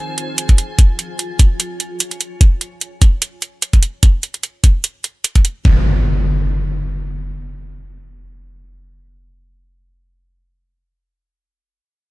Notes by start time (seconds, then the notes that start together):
Already playing: F4 C5 G#5
0.18 closed hi-hat
0.38 closed hi-hat
0.49 kick, closed hi-hat
0.58 closed hi-hat
0.79 kick, closed hi-hat
0.99 closed hi-hat
1.19 closed hi-hat
1.27 C#5
1.39 kick, closed hi-hat
1.60 closed hi-hat
1.80 closed hi-hat
2.00 closed hi-hat
2.11 closed hi-hat
2.21 closed hi-hat
2.41 kick, closed hi-hat
2.61 closed hi-hat
2.81 closed hi-hat
3.02 kick, closed hi-hat
3.22 closed hi-hat
3.42 closed hi-hat
3.62 closed hi-hat
3.73 kick, closed hi-hat
3.83 closed hi-hat
4.03 kick, closed hi-hat
4.23 closed hi-hat
4.34 closed hi-hat
4.43 closed hi-hat
4.64 kick, closed hi-hat
4.84 closed hi-hat
5.04 closed hi-hat
5.24 closed hi-hat
5.35 kick, closed hi-hat
5.45 closed hi-hat
5.65 kick, impact